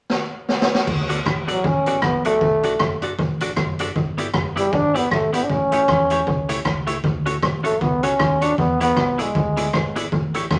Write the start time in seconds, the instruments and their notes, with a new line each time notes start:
0.10 snare
0.49 snare
0.62 snare
0.74 snare
0.87 fingered electric bass D2, kick, crash
1.09 clean electric guitar B3 F#4 A4 D5, closed hi-hat
1.26 fingered electric bass A1, kick, cross-stick
1.48 trombone F#3, clean electric guitar B3 F#4 A4 D5, closed hi-hat
1.64 fingered electric bass A1, trombone C#4, kick
1.86 clean electric guitar B3 F#4 A4 D5, closed hi-hat
2.02 fingered electric bass A#1, trombone B3, muted clean electric guitar stroke, kick, cross-stick
2.25 trombone A3, clean electric guitar B3 F#4 A4 D5, closed hi-hat
2.41 fingered electric bass B1, kick
2.63 clean electric guitar D4 F#4 A4 D5, closed hi-hat
2.79 fingered electric bass F#1, kick, cross-stick
3.02 clean electric guitar D4 F#4 A4 D5, closed hi-hat
3.19 fingered electric bass A1, kick
3.40 clean electric guitar D4 F#4 A4 D5, closed hi-hat
3.56 fingered electric bass F#1, kick, cross-stick
3.79 clean electric guitar D4 F#4 A4 D5, closed hi-hat
3.96 fingered electric bass G1, kick
4.18 clean electric guitar B3 E4 G4 D5, closed hi-hat
4.34 fingered electric bass F#1, kick, cross-stick
4.56 trombone G3, clean electric guitar B3 E4 G4 D5, closed hi-hat
4.73 fingered electric bass G1, trombone D4, kick
4.95 clean electric guitar B3 E4 G4 D5, trombone B3, closed hi-hat
5.10 fingered electric bass G#1, trombone A3, muted clean electric guitar stroke, kick, cross-stick
5.33 clean electric guitar B3 E4 G4 D5, trombone B3, closed hi-hat
5.44 trombone D4
5.50 fingered electric bass A1, trombone C#4, kick
5.72 clean electric guitar A3 E4 G4 C#5, closed hi-hat
5.88 fingered electric bass E2, kick, cross-stick
6.10 clean electric guitar A3 E4 G4 C#5, closed hi-hat
6.27 fingered electric bass C#2, kick
6.49 clean electric guitar A3 E4 G4 C#5, closed hi-hat
6.65 fingered electric bass C#2, kick, cross-stick
6.87 clean electric guitar A3 E4 G4 C#5, closed hi-hat
7.04 fingered electric bass D2, kick
7.26 clean electric guitar C#4 F#4 A4 C#5, closed hi-hat
7.42 fingered electric bass A1, kick, cross-stick
7.64 trombone A3, clean electric guitar C#4 F#4 A4 C#5, closed hi-hat
7.81 fingered electric bass C#2, trombone B3, kick
8.03 trombone C#4, clean electric guitar C#4 F#4 A4 C#5, closed hi-hat
8.19 fingered electric bass D#2, muted clean electric guitar stroke, kick, cross-stick
8.41 clean electric guitar C#4 F#4 A4 C#5, trombone D4, closed hi-hat
8.58 fingered electric bass E2, trombone B3, kick
8.81 clean electric guitar B3 E4 G#4 D5, trombone B3, closed hi-hat
8.97 fingered electric bass B1, kick, cross-stick
9.18 trombone G#3, clean electric guitar B3 E4 G#4 D5, closed hi-hat
9.35 fingered electric bass D2, kick
9.57 clean electric guitar B3 E4 G#4 D5, closed hi-hat
9.73 fingered electric bass G#1, kick, cross-stick
9.96 clean electric guitar B3 E4 G#4 D5, closed hi-hat
10.12 fingered electric bass A1, kick
10.34 clean electric guitar A3 E4 G4 C#5, closed hi-hat
10.51 fingered electric bass E2, kick, cross-stick